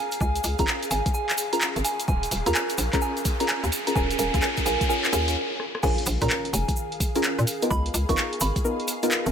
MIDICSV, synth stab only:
0, 0, Header, 1, 2, 480
1, 0, Start_track
1, 0, Tempo, 468750
1, 210, Time_signature, 4, 2, 24, 8
1, 9543, End_track
2, 0, Start_track
2, 0, Title_t, "Synth stab"
2, 0, Program_c, 0, 62
2, 0, Note_on_c, 0, 61, 74
2, 0, Note_on_c, 0, 65, 68
2, 0, Note_on_c, 0, 68, 69
2, 0, Note_on_c, 0, 70, 81
2, 196, Note_off_c, 0, 61, 0
2, 196, Note_off_c, 0, 65, 0
2, 196, Note_off_c, 0, 68, 0
2, 196, Note_off_c, 0, 70, 0
2, 604, Note_on_c, 0, 68, 71
2, 604, Note_on_c, 0, 70, 84
2, 605, Note_on_c, 0, 61, 76
2, 605, Note_on_c, 0, 65, 68
2, 1156, Note_off_c, 0, 68, 0
2, 1156, Note_off_c, 0, 70, 0
2, 1157, Note_off_c, 0, 61, 0
2, 1157, Note_off_c, 0, 65, 0
2, 1565, Note_on_c, 0, 61, 77
2, 1565, Note_on_c, 0, 65, 70
2, 1565, Note_on_c, 0, 68, 70
2, 1565, Note_on_c, 0, 70, 85
2, 2117, Note_off_c, 0, 61, 0
2, 2117, Note_off_c, 0, 65, 0
2, 2117, Note_off_c, 0, 68, 0
2, 2117, Note_off_c, 0, 70, 0
2, 2524, Note_on_c, 0, 61, 80
2, 2524, Note_on_c, 0, 65, 72
2, 2524, Note_on_c, 0, 68, 72
2, 2525, Note_on_c, 0, 70, 91
2, 2596, Note_off_c, 0, 61, 0
2, 2596, Note_off_c, 0, 65, 0
2, 2596, Note_off_c, 0, 68, 0
2, 2597, Note_off_c, 0, 70, 0
2, 3004, Note_on_c, 0, 61, 83
2, 3004, Note_on_c, 0, 68, 76
2, 3004, Note_on_c, 0, 70, 88
2, 3005, Note_on_c, 0, 65, 74
2, 3076, Note_off_c, 0, 61, 0
2, 3076, Note_off_c, 0, 68, 0
2, 3076, Note_off_c, 0, 70, 0
2, 3077, Note_off_c, 0, 65, 0
2, 3484, Note_on_c, 0, 68, 71
2, 3485, Note_on_c, 0, 61, 80
2, 3485, Note_on_c, 0, 65, 76
2, 3485, Note_on_c, 0, 70, 88
2, 3556, Note_off_c, 0, 68, 0
2, 3557, Note_off_c, 0, 61, 0
2, 3557, Note_off_c, 0, 65, 0
2, 3557, Note_off_c, 0, 70, 0
2, 3964, Note_on_c, 0, 68, 75
2, 3964, Note_on_c, 0, 70, 90
2, 3965, Note_on_c, 0, 61, 83
2, 3965, Note_on_c, 0, 65, 73
2, 4036, Note_off_c, 0, 68, 0
2, 4036, Note_off_c, 0, 70, 0
2, 4037, Note_off_c, 0, 61, 0
2, 4037, Note_off_c, 0, 65, 0
2, 4050, Note_on_c, 0, 61, 82
2, 4050, Note_on_c, 0, 65, 73
2, 4050, Note_on_c, 0, 68, 78
2, 4050, Note_on_c, 0, 70, 93
2, 4276, Note_off_c, 0, 61, 0
2, 4276, Note_off_c, 0, 65, 0
2, 4276, Note_off_c, 0, 68, 0
2, 4276, Note_off_c, 0, 70, 0
2, 4290, Note_on_c, 0, 65, 76
2, 4290, Note_on_c, 0, 68, 80
2, 4290, Note_on_c, 0, 70, 91
2, 4291, Note_on_c, 0, 61, 85
2, 4516, Note_off_c, 0, 61, 0
2, 4516, Note_off_c, 0, 65, 0
2, 4516, Note_off_c, 0, 68, 0
2, 4516, Note_off_c, 0, 70, 0
2, 4530, Note_on_c, 0, 61, 82
2, 4530, Note_on_c, 0, 65, 76
2, 4530, Note_on_c, 0, 68, 76
2, 4531, Note_on_c, 0, 70, 92
2, 4756, Note_off_c, 0, 61, 0
2, 4756, Note_off_c, 0, 65, 0
2, 4756, Note_off_c, 0, 68, 0
2, 4756, Note_off_c, 0, 70, 0
2, 4770, Note_on_c, 0, 61, 86
2, 4770, Note_on_c, 0, 65, 76
2, 4770, Note_on_c, 0, 68, 76
2, 4770, Note_on_c, 0, 70, 94
2, 4996, Note_off_c, 0, 61, 0
2, 4996, Note_off_c, 0, 65, 0
2, 4996, Note_off_c, 0, 68, 0
2, 4996, Note_off_c, 0, 70, 0
2, 5009, Note_on_c, 0, 65, 76
2, 5010, Note_on_c, 0, 61, 84
2, 5010, Note_on_c, 0, 68, 76
2, 5010, Note_on_c, 0, 70, 92
2, 5236, Note_off_c, 0, 61, 0
2, 5236, Note_off_c, 0, 65, 0
2, 5236, Note_off_c, 0, 68, 0
2, 5236, Note_off_c, 0, 70, 0
2, 5250, Note_on_c, 0, 61, 81
2, 5250, Note_on_c, 0, 65, 76
2, 5250, Note_on_c, 0, 68, 76
2, 5250, Note_on_c, 0, 70, 88
2, 5476, Note_off_c, 0, 61, 0
2, 5476, Note_off_c, 0, 65, 0
2, 5476, Note_off_c, 0, 68, 0
2, 5476, Note_off_c, 0, 70, 0
2, 5970, Note_on_c, 0, 68, 93
2, 5970, Note_on_c, 0, 70, 116
2, 5971, Note_on_c, 0, 61, 105
2, 5971, Note_on_c, 0, 65, 94
2, 6302, Note_off_c, 0, 68, 0
2, 6302, Note_off_c, 0, 70, 0
2, 6303, Note_off_c, 0, 61, 0
2, 6303, Note_off_c, 0, 65, 0
2, 6365, Note_on_c, 0, 61, 82
2, 6365, Note_on_c, 0, 65, 73
2, 6365, Note_on_c, 0, 68, 72
2, 6365, Note_on_c, 0, 70, 89
2, 7287, Note_off_c, 0, 65, 0
2, 7287, Note_off_c, 0, 68, 0
2, 7288, Note_off_c, 0, 61, 0
2, 7288, Note_off_c, 0, 70, 0
2, 7325, Note_on_c, 0, 61, 92
2, 7325, Note_on_c, 0, 65, 87
2, 7326, Note_on_c, 0, 68, 89
2, 7326, Note_on_c, 0, 70, 103
2, 7373, Note_off_c, 0, 61, 0
2, 7373, Note_off_c, 0, 65, 0
2, 7373, Note_off_c, 0, 68, 0
2, 7373, Note_off_c, 0, 70, 0
2, 7805, Note_on_c, 0, 63, 71
2, 7805, Note_on_c, 0, 65, 70
2, 7805, Note_on_c, 0, 70, 87
2, 7806, Note_on_c, 0, 59, 78
2, 7882, Note_off_c, 0, 59, 0
2, 7882, Note_off_c, 0, 63, 0
2, 7882, Note_off_c, 0, 65, 0
2, 7882, Note_off_c, 0, 70, 0
2, 8285, Note_on_c, 0, 59, 96
2, 8285, Note_on_c, 0, 63, 88
2, 8285, Note_on_c, 0, 65, 89
2, 8285, Note_on_c, 0, 70, 102
2, 8830, Note_off_c, 0, 59, 0
2, 8830, Note_off_c, 0, 63, 0
2, 8830, Note_off_c, 0, 65, 0
2, 8830, Note_off_c, 0, 70, 0
2, 8851, Note_on_c, 0, 59, 80
2, 8851, Note_on_c, 0, 63, 75
2, 8851, Note_on_c, 0, 65, 74
2, 8851, Note_on_c, 0, 70, 88
2, 8937, Note_off_c, 0, 59, 0
2, 8937, Note_off_c, 0, 63, 0
2, 8937, Note_off_c, 0, 65, 0
2, 8937, Note_off_c, 0, 70, 0
2, 9244, Note_on_c, 0, 59, 93
2, 9244, Note_on_c, 0, 63, 83
2, 9244, Note_on_c, 0, 65, 86
2, 9244, Note_on_c, 0, 70, 101
2, 9292, Note_off_c, 0, 59, 0
2, 9292, Note_off_c, 0, 63, 0
2, 9292, Note_off_c, 0, 65, 0
2, 9292, Note_off_c, 0, 70, 0
2, 9543, End_track
0, 0, End_of_file